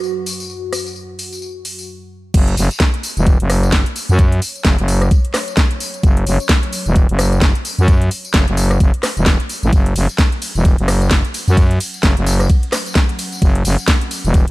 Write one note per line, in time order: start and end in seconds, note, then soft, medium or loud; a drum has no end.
0.00 1.84 F#2 medium
0.00 1.84 F#3 medium
0.00 1.88 F#4 medium
0.00 tambourine soft
0.26 open hi-hat medium
0.26 tambourine medium
0.40 tambourine soft
0.50 tambourine soft
0.73 cross-stick medium
0.73 open hi-hat medium
0.73 tambourine medium
0.86 tambourine soft
0.96 tambourine soft
1.19 open hi-hat medium
1.19 tambourine medium
1.32 tambourine soft
1.42 tambourine soft
1.65 open hi-hat medium
1.65 tambourine medium
1.79 tambourine soft
2.34 2.56 F#1 medium
2.34 14.51 F#3 medium
2.34 14.51 C#4 medium
2.34 9.71 C#5 medium
2.34 kick loud
2.34 closed hi-hat medium
2.34 tambourine soft
2.34 crash loud
2.48 closed hi-hat medium
2.57 2.69 F#1 loud
2.57 open hi-hat loud
2.57 tambourine medium
2.71 closed hi-hat soft
2.71 tambourine soft
2.80 kick loud
2.80 snare loud
2.80 closed hi-hat medium
2.94 closed hi-hat medium
3.03 open hi-hat loud
3.03 tambourine medium
3.17 3.38 E1 loud
3.17 closed hi-hat soft
3.17 tambourine soft
3.27 kick loud
3.27 closed hi-hat medium
3.27 tambourine soft
3.40 3.84 F#1 loud
3.40 closed hi-hat medium
3.50 cross-stick medium
3.50 open hi-hat loud
3.50 tambourine medium
3.63 closed hi-hat soft
3.63 tambourine soft
3.72 kick loud
3.72 snare loud
3.72 closed hi-hat medium
3.86 closed hi-hat medium
3.96 open hi-hat loud
3.96 tambourine medium
4.09 4.40 F#2 medium
4.09 closed hi-hat soft
4.09 tambourine soft
4.19 kick loud
4.19 closed hi-hat medium
4.19 tambourine soft
4.32 closed hi-hat medium
4.42 open hi-hat loud
4.42 tambourine medium
4.55 closed hi-hat soft
4.55 tambourine soft
4.65 4.76 F#1 loud
4.65 kick loud
4.65 snare loud
4.65 closed hi-hat medium
4.65 tambourine soft
4.79 5.10 F#1 loud
4.79 closed hi-hat medium
4.88 open hi-hat loud
4.88 tambourine medium
5.02 cross-stick medium
5.02 closed hi-hat soft
5.02 tambourine soft
5.11 kick loud
5.11 closed hi-hat medium
5.11 tambourine soft
5.25 closed hi-hat medium
5.34 cross-stick medium
5.34 snare medium
5.34 open hi-hat loud
5.34 tambourine medium
5.48 closed hi-hat soft
5.48 tambourine soft
5.57 kick loud
5.57 snare loud
5.57 closed hi-hat medium
5.71 closed hi-hat medium
5.80 open hi-hat loud
5.80 tambourine medium
5.94 closed hi-hat soft
5.94 tambourine soft
6.03 6.25 F#1 loud
6.03 kick loud
6.03 closed hi-hat medium
6.03 tambourine soft
6.17 closed hi-hat medium
6.26 6.38 F#1 loud
6.26 open hi-hat loud
6.26 tambourine medium
6.40 closed hi-hat soft
6.40 tambourine soft
6.49 kick loud
6.49 snare loud
6.49 closed hi-hat medium
6.63 closed hi-hat soft
6.73 open hi-hat loud
6.73 tambourine medium
6.86 7.07 E1 loud
6.86 tambourine soft
6.96 kick loud
6.96 closed hi-hat medium
6.96 tambourine soft
7.09 7.53 F#1 loud
7.09 closed hi-hat medium
7.19 cross-stick medium
7.19 open hi-hat loud
7.19 tambourine medium
7.32 closed hi-hat soft
7.32 tambourine soft
7.42 kick loud
7.42 snare loud
7.42 closed hi-hat medium
7.42 tambourine soft
7.55 closed hi-hat medium
7.65 open hi-hat loud
7.65 tambourine medium
7.78 8.10 F#2 loud
7.78 closed hi-hat soft
7.78 tambourine soft
7.88 kick loud
7.88 closed hi-hat medium
7.88 tambourine soft
8.02 closed hi-hat medium
8.11 open hi-hat loud
8.11 tambourine medium
8.25 closed hi-hat soft
8.25 tambourine soft
8.34 8.46 F#1 loud
8.34 kick loud
8.34 snare loud
8.34 closed hi-hat medium
8.34 tambourine soft
8.48 8.79 F#1 medium
8.48 closed hi-hat soft
8.57 open hi-hat loud
8.57 tambourine medium
8.71 cross-stick medium
8.71 closed hi-hat soft
8.71 tambourine soft
8.80 kick loud
8.80 closed hi-hat medium
8.80 tambourine soft
8.94 closed hi-hat medium
9.03 cross-stick medium
9.03 snare medium
9.03 open hi-hat loud
9.03 tambourine medium
9.17 9.38 E1 loud
9.17 closed hi-hat soft
9.17 tambourine soft
9.26 kick loud
9.26 snare loud
9.26 closed hi-hat medium
9.40 closed hi-hat medium
9.49 open hi-hat loud
9.49 tambourine medium
9.63 9.71 A1 loud
9.63 closed hi-hat soft
9.63 tambourine soft
9.72 14.51 F#5 medium
9.72 kick loud
9.72 closed hi-hat medium
9.72 ride medium
9.72 tambourine soft
9.86 closed hi-hat medium
9.96 10.07 F#1 loud
9.96 open hi-hat loud
9.96 ride medium
9.96 tambourine medium
10.09 closed hi-hat soft
10.09 tambourine soft
10.18 kick loud
10.18 snare loud
10.18 closed hi-hat medium
10.18 ride medium
10.18 tambourine soft
10.32 closed hi-hat soft
10.42 open hi-hat loud
10.42 ride medium
10.42 tambourine medium
10.55 10.76 E1 loud
10.55 closed hi-hat soft
10.55 tambourine soft
10.65 kick loud
10.65 closed hi-hat medium
10.65 ride medium
10.65 tambourine soft
10.78 11.22 F#1 loud
10.78 closed hi-hat medium
10.88 cross-stick medium
10.88 open hi-hat loud
10.88 ride medium
10.88 tambourine medium
11.02 tambourine soft
11.11 kick loud
11.11 snare loud
11.11 closed hi-hat medium
11.11 ride medium
11.25 closed hi-hat soft
11.34 open hi-hat loud
11.34 ride medium
11.34 tambourine medium
11.48 11.79 F#2 loud
11.48 tambourine soft
11.57 kick loud
11.57 closed hi-hat medium
11.57 ride medium
11.57 tambourine soft
11.71 closed hi-hat medium
11.80 open hi-hat loud
11.80 ride medium
11.80 tambourine medium
11.94 closed hi-hat soft
11.94 tambourine soft
12.03 12.15 F#1 loud
12.03 kick loud
12.03 snare loud
12.03 closed hi-hat medium
12.03 ride medium
12.03 tambourine soft
12.17 12.48 F#1 loud
12.17 closed hi-hat soft
12.27 open hi-hat loud
12.27 ride medium
12.27 tambourine medium
12.40 cross-stick medium
12.40 closed hi-hat soft
12.40 tambourine soft
12.50 kick loud
12.50 closed hi-hat medium
12.50 ride medium
12.50 tambourine soft
12.63 closed hi-hat medium
12.72 cross-stick medium
12.72 snare medium
12.72 open hi-hat loud
12.72 ride medium
12.72 tambourine medium
12.86 closed hi-hat soft
12.86 tambourine soft
12.95 kick loud
12.95 snare loud
12.95 closed hi-hat medium
12.95 ride medium
13.09 closed hi-hat medium
13.19 open hi-hat loud
13.19 ride medium
13.19 tambourine medium
13.32 closed hi-hat soft
13.32 tambourine soft
13.42 13.63 F#1 loud
13.42 kick loud
13.42 closed hi-hat medium
13.42 ride medium
13.55 closed hi-hat medium
13.65 13.76 F#1 loud
13.65 open hi-hat loud
13.65 ride medium
13.65 tambourine medium
13.78 closed hi-hat soft
13.78 tambourine soft
13.88 kick loud
13.88 snare loud
13.88 closed hi-hat medium
13.88 ride medium
14.01 closed hi-hat medium
14.11 open hi-hat loud
14.11 ride medium
14.11 tambourine medium
14.24 14.46 E1 loud
14.24 closed hi-hat soft
14.24 tambourine soft
14.34 kick loud
14.34 closed hi-hat medium
14.34 ride medium
14.34 tambourine soft
14.48 14.51 F#1 loud
14.48 closed hi-hat medium